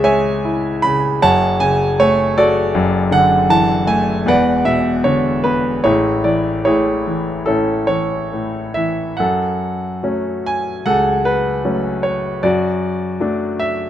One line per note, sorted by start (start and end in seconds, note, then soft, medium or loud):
0.00 1.19 C#2 medium
0.00 0.83 C#3 medium
0.00 1.18 G#4 medium
0.00 0.04 C#5 medium
0.00 1.19 C#5 medium
0.00 0.04 E5 medium
0.00 1.19 E5 medium
0.00 0.80 G#5 medium
0.05 1.19 G#3 soft
0.45 1.21 E4 medium
0.82 1.22 C#3 medium
0.82 1.23 B5 loud
1.22 2.71 F#1 medium
1.22 2.71 F#2 medium
1.22 1.98 C#5 medium
1.22 2.71 F#5 medium
1.22 1.62 A5 loud
1.60 2.71 C#3 medium
1.60 2.00 G#5 medium
2.00 2.73 A3 medium
2.00 2.39 C#5 loud
2.37 2.74 F#4 medium
2.37 3.85 A4 medium
2.37 3.08 D5 medium
2.75 4.23 F#1 medium
2.75 4.23 F#2 medium
3.11 4.23 D3 medium
3.11 3.51 F#5 loud
3.49 4.25 E3 medium
3.49 3.90 A5 loud
3.87 4.25 A3 medium
3.87 4.24 G#5 medium
4.26 5.79 E1 medium
4.26 5.79 E2 medium
4.26 5.42 B4 medium
4.26 5.80 D5 medium
4.26 4.64 F#5 medium
4.65 5.80 B2 soft
4.65 5.06 E5 medium
5.04 5.82 D3 soft
5.04 5.45 C#5 medium
5.44 5.83 B3 medium
5.44 5.81 B4 medium
5.84 9.16 A1 medium
5.84 6.66 A2 medium
5.84 6.64 E4 medium
5.84 6.65 G#4 medium
5.84 6.25 C#5 medium
6.24 7.06 E3 soft
6.24 6.62 D5 medium
6.65 7.47 A2 soft
6.65 7.46 E4 medium
6.65 8.30 G#4 medium
6.65 7.43 C#5 medium
7.07 7.87 E3 medium
7.46 8.32 A2 soft
7.46 9.16 C#4 soft
7.46 9.16 E4 soft
7.46 8.72 A4 medium
7.87 8.75 E3 soft
7.87 8.79 C#5 medium
8.33 9.17 A2 soft
8.74 9.19 E3 soft
8.74 9.20 E5 medium
9.17 12.40 F#2 medium
9.17 10.82 A4 medium
9.17 9.98 F#5 medium
10.03 10.69 F#3 soft
10.03 10.69 A3 soft
10.03 10.69 C#4 soft
10.46 10.88 G#5 medium
10.86 12.40 C#2 medium
10.86 12.40 A4 medium
10.86 11.27 F#5 medium
11.25 12.06 B4 medium
11.65 12.28 F#3 soft
11.65 12.28 A3 soft
11.65 12.28 C#4 soft
12.03 12.44 C#5 medium
12.43 13.90 F#2 medium
12.43 13.90 F#4 medium
12.43 13.18 D5 medium
13.20 13.82 F#3 soft
13.20 13.83 A3 soft
13.20 13.83 D4 soft
13.60 13.90 E5 medium